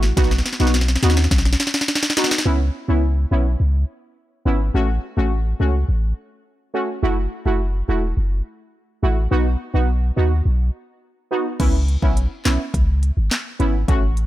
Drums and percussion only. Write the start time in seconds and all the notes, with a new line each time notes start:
0.03 snare
0.17 kick, snare, closed hi-hat
0.24 snare
0.31 snare
0.38 snare
0.46 snare, closed hi-hat
0.53 snare
0.60 snare
0.67 snare
0.74 snare, closed hi-hat
0.81 snare
0.88 snare, closed hi-hat
0.96 snare
1.03 snare, closed hi-hat
1.10 snare
1.17 snare
1.24 snare
1.31 kick, snare, closed hi-hat
1.38 snare
1.45 snare, closed hi-hat
1.53 snare
1.60 snare, closed hi-hat
1.67 snare
1.74 snare
1.81 snare
1.88 snare, closed hi-hat
1.95 snare
2.03 snare
2.10 snare
2.17 snare, closed hi-hat
2.24 snare
2.31 snare
2.38 snare
11.60 kick, closed hi-hat, crash
11.88 closed hi-hat
12.02 kick
12.17 closed hi-hat
12.45 snare, clap, closed hi-hat
12.74 kick, closed hi-hat
13.03 closed hi-hat
13.31 snare, clap, closed hi-hat
13.60 closed hi-hat
13.88 kick, closed hi-hat
14.17 closed hi-hat